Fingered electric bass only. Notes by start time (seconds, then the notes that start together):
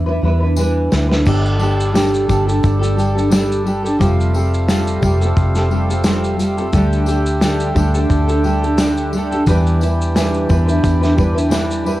Already playing: E2
0.23 E2
0.92 D2
1.27 G1
2.29 G1
2.64 G1
4.00 F1
5.02 F1
5.37 F1
6.73 D2
7.75 D2
8.09 D2
9.47 E2
10.49 E2
10.83 E2